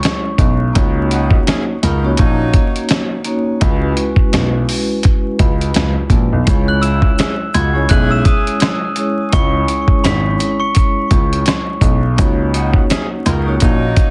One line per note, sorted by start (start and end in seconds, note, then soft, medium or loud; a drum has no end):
0.00 0.58 G#3 medium
0.00 0.58 C#4 medium
0.00 0.58 E4 medium
0.00 0.59 G#4 medium
0.00 0.59 C#5 loud
0.00 0.21 C#6 medium
0.00 0.21 C#7 medium
0.00 closed hi-hat medium
0.05 snare loud
0.05 snare medium
0.38 0.68 B1 medium
0.38 kick medium
0.38 closed hi-hat medium
0.73 1.33 C#2 loud
0.73 1.74 A#3 medium
0.73 1.75 C#4 medium
0.73 1.75 D#4 medium
0.73 1.75 F#4 medium
0.73 1.76 C#5 loud
0.73 kick loud
0.73 closed hi-hat loud
1.11 1.40 C#4 medium
1.11 1.40 D#4 loud
1.11 1.40 F#4 loud
1.11 closed hi-hat medium
1.31 kick loud
1.47 1.64 C#4 medium
1.47 1.64 E4 medium
1.47 1.64 G#4 loud
1.47 snare loud
1.47 snare medium
1.47 closed hi-hat loud
1.83 2.12 C#2 medium
1.83 2.11 D#4 medium
1.83 2.11 F#4 medium
1.83 2.11 A#4 medium
1.83 closed hi-hat medium
2.03 3.17 A#3 loud
2.03 3.17 C#4 medium
2.03 3.18 D#4 medium
2.03 3.18 F#4 medium
2.03 3.18 C#5 loud
2.17 2.48 A#1 medium
2.17 2.86 F#3 loud
2.17 2.86 A#3 loud
2.17 2.86 D#4 loud
2.17 kick loud
2.17 closed hi-hat loud
2.54 kick loud
2.54 closed hi-hat medium
2.76 closed hi-hat medium
2.89 snare loud
2.89 closed hi-hat medium
3.24 3.58 A#3 medium
3.24 3.59 C#4 medium
3.24 3.59 D#4 medium
3.24 3.59 F#4 medium
3.24 3.60 C#5 medium
3.24 closed hi-hat medium
3.61 3.90 C#2 loud
3.61 3.94 G#3 loud
3.61 3.95 C#4 medium
3.61 3.95 F#4 medium
3.61 3.96 B4 loud
3.61 kick loud
3.61 closed hi-hat loud
3.96 6.29 G#3 loud
3.96 6.30 C#4 medium
3.96 6.30 E4 medium
3.96 6.30 F#4 medium
3.96 6.31 B4 loud
3.96 closed hi-hat medium
4.16 kick loud
4.33 4.62 B1 medium
4.33 snare loud
4.33 snare medium
4.33 closed hi-hat loud
4.69 open hi-hat medium
5.03 kick loud
5.03 closed hi-hat medium
5.39 5.68 C#2 medium
5.39 kick loud
5.39 closed hi-hat medium
5.61 closed hi-hat medium
5.74 5.93 C#2 medium
5.74 snare loud
5.74 closed hi-hat medium
6.10 6.27 A#1 medium
6.10 kick medium
6.10 closed hi-hat medium
6.33 6.44 B1 medium
6.45 7.05 C#2 loud
6.45 7.46 G#3 loud
6.45 7.47 C#4 medium
6.45 7.47 E4 medium
6.45 7.47 G#4 medium
6.45 7.48 C#5 loud
6.45 kick loud
6.45 closed hi-hat loud
6.45 maracas medium
6.68 6.81 F#6 medium
6.68 6.82 F#7 soft
6.82 7.12 G#3 medium
6.82 7.12 C#4 medium
6.82 7.12 E4 loud
6.82 7.50 E6 medium
6.82 7.50 E7 medium
6.82 closed hi-hat medium
6.82 maracas medium
7.02 kick loud
7.18 7.35 C#4 medium
7.18 7.35 E4 loud
7.18 7.35 G#4 loud
7.18 snare loud
7.18 snare medium
7.18 closed hi-hat loud
7.18 maracas medium
7.54 7.83 C#2 medium
7.54 7.83 B3 medium
7.54 7.83 D#4 medium
7.54 7.83 F#4 medium
7.54 7.87 G#6 medium
7.54 7.87 G#7 medium
7.54 closed hi-hat medium
7.54 high woodblock medium
7.54 maracas soft
7.73 8.88 G#3 loud
7.73 8.88 C#4 medium
7.73 8.88 E4 medium
7.73 8.89 G#4 medium
7.73 8.89 C#5 loud
7.89 8.19 B1 loud
7.89 8.58 C#4 loud
7.89 8.57 E4 loud
7.89 8.58 G#4 loud
7.89 8.09 F#6 medium
7.89 8.09 F#7 medium
7.89 kick loud
7.89 closed hi-hat medium
7.89 maracas medium
8.11 8.24 E6 medium
8.11 8.25 E7 medium
8.25 8.79 D#6 medium
8.25 8.79 D#7 medium
8.25 kick loud
8.25 closed hi-hat medium
8.25 maracas soft
8.47 closed hi-hat medium
8.60 snare loud
8.60 closed hi-hat medium
8.60 high woodblock medium
8.60 maracas medium
8.96 9.29 G#3 medium
8.96 9.29 C#4 medium
8.96 9.30 E4 medium
8.96 9.31 G#4 medium
8.96 9.31 C#5 medium
8.96 closed hi-hat medium
8.96 maracas medium
9.30 9.62 C#2 loud
9.30 9.65 G#3 medium
9.30 9.65 C#4 loud
9.30 9.65 E4 medium
9.30 9.66 G#4 medium
9.30 9.66 C#5 loud
9.30 10.00 C#6 loud
9.30 kick loud
9.30 closed hi-hat loud
9.30 maracas medium
9.34 10.01 C#7 medium
9.67 12.00 G#3 medium
9.67 12.01 C#4 medium
9.67 12.01 E4 medium
9.67 12.01 G#4 medium
9.67 12.02 C#5 loud
9.67 closed hi-hat medium
9.67 maracas medium
9.88 kick loud
10.04 10.33 G#1 loud
10.04 10.57 B5 medium
10.04 10.58 B6 medium
10.04 snare loud
10.04 snare medium
10.04 closed hi-hat loud
10.04 maracas medium
10.40 closed hi-hat medium
10.40 maracas soft
10.60 11.63 C#6 medium
10.60 11.64 C#7 medium
10.75 kick loud
10.75 closed hi-hat loud
10.75 maracas medium
11.11 11.40 C#2 medium
11.11 kick loud
11.11 closed hi-hat medium
11.11 maracas soft
11.33 closed hi-hat medium
11.46 snare loud
11.46 closed hi-hat medium
11.46 high woodblock medium
11.46 maracas medium
11.81 12.18 B1 loud
11.81 kick loud
11.81 closed hi-hat medium
11.81 maracas medium
12.16 12.76 C#2 loud
12.16 13.17 A#3 medium
12.16 13.18 C#4 medium
12.16 13.18 D#4 medium
12.16 13.18 F#4 medium
12.16 13.19 C#5 loud
12.16 kick loud
12.16 closed hi-hat loud
12.16 maracas medium
12.54 12.83 C#4 medium
12.54 12.83 D#4 loud
12.54 12.83 F#4 loud
12.54 closed hi-hat medium
12.54 maracas medium
12.74 kick loud
12.90 13.07 C#4 medium
12.90 13.07 E4 medium
12.90 13.07 G#4 loud
12.90 snare loud
12.90 snare medium
12.90 closed hi-hat loud
12.90 maracas medium
13.26 13.54 C#2 medium
13.26 13.54 D#4 medium
13.26 13.54 F#4 medium
13.26 13.54 A#4 medium
13.26 closed hi-hat medium
13.26 high woodblock medium
13.26 maracas soft
13.46 14.10 A#3 loud
13.46 14.10 C#4 medium
13.46 14.10 D#4 medium
13.46 14.10 F#4 medium
13.46 14.10 C#5 loud
13.60 13.91 A#1 loud
13.60 14.10 F#3 loud
13.60 14.10 A#3 loud
13.60 14.10 D#4 loud
13.60 kick loud
13.60 closed hi-hat loud
13.60 maracas medium
13.96 kick loud
13.96 closed hi-hat medium
13.96 maracas soft